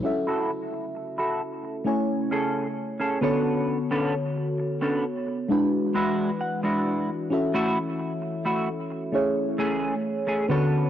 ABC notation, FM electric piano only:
X:1
M:4/4
L:1/8
Q:1/4=66
K:F#m
V:1 name="FM electric piano"
[CEFAe]4 [A,CEcg]3 [D,B,FAc]- | [D,B,FAc]4 [G,DEFB]4 | [CEFAe]4 [A,CEGc]3 [D,B,FAc] |]